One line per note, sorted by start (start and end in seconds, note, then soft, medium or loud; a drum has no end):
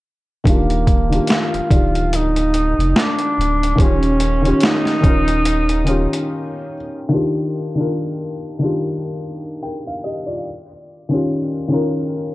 0.44 1.20 D#1 loud
0.44 0.88 D#3 medium
0.44 0.89 D4 medium
0.44 0.90 F4 medium
0.44 kick loud
0.44 closed hi-hat medium
0.48 1.33 A#3 medium
0.48 0.91 G4 medium
0.70 closed hi-hat soft
0.87 kick medium
0.87 closed hi-hat medium
1.09 1.53 D#3 medium
1.09 1.54 D4 medium
1.09 1.55 F4 medium
1.09 closed hi-hat soft
1.15 1.56 G4 medium
1.27 snare loud
1.27 closed hi-hat medium
1.32 2.17 F4 medium
1.54 1.60 D1 medium
1.54 closed hi-hat soft
1.69 2.74 D1 medium
1.69 2.87 D#3 medium
1.69 2.89 F4 medium
1.69 2.88 D5 medium
1.69 kick loud
1.69 closed hi-hat medium
1.75 2.90 G4 medium
1.95 closed hi-hat soft
2.13 2.97 D#4 loud
2.13 closed hi-hat medium
2.36 closed hi-hat soft
2.54 closed hi-hat medium
2.78 2.94 F1 medium
2.78 closed hi-hat soft
2.96 3.83 D4 medium
2.96 snare loud
2.96 closed hi-hat medium
3.19 closed hi-hat soft
3.38 3.75 D1 medium
3.38 closed hi-hat medium
3.63 closed hi-hat soft
3.75 4.53 D#1 loud
3.75 4.21 D#3 medium
3.75 4.22 C#4 medium
3.75 4.23 F4 medium
3.75 kick loud
3.80 4.67 C#4 medium
3.80 4.24 G4 medium
3.80 closed hi-hat medium
4.03 closed hi-hat soft
4.20 closed hi-hat medium
4.42 4.86 D#3 medium
4.42 4.87 C#4 medium
4.42 4.88 F4 medium
4.42 closed hi-hat soft
4.47 4.89 G4 medium
4.61 snare loud
4.61 closed hi-hat medium
4.65 6.72 D#4 loud
4.85 snare soft
4.85 closed hi-hat soft
5.00 5.62 D#3 medium
5.00 5.63 C#4 medium
5.00 5.64 F4 medium
5.00 kick loud
5.00 closed hi-hat medium
5.04 6.07 D#1 medium
5.04 5.65 A#4 medium
5.28 closed hi-hat soft
5.45 closed hi-hat medium
5.69 closed hi-hat soft
5.84 6.73 D#3 medium
5.84 6.74 C#4 medium
5.84 closed hi-hat medium
5.88 6.75 F4 medium
5.88 6.76 G4 medium
6.13 closed hi-hat soft
7.09 7.54 D#3 loud
7.09 7.55 D4 medium
7.09 7.56 F4 medium
7.15 7.57 G4 loud
7.75 8.32 D#3 medium
7.75 8.33 D4 medium
7.79 8.34 F4 medium
7.79 8.35 A#4 medium
8.59 9.75 D#3 medium
8.59 9.76 D4 medium
8.63 9.63 F4 medium
8.63 9.64 G4 medium
9.63 9.85 A#4 soft
9.63 9.85 G5 medium
9.87 10.04 F5 medium
10.04 10.27 G4 soft
10.04 10.26 D#5 medium
10.27 10.67 F4 medium
10.27 10.66 D5 medium
11.09 11.53 D#3 medium
11.09 11.54 C#4 medium
11.09 11.55 F4 medium
11.14 11.56 G4 medium
11.68 12.35 D#3 medium
11.68 12.35 C#4 medium
11.68 12.35 F4 medium
11.74 12.35 A#4 loud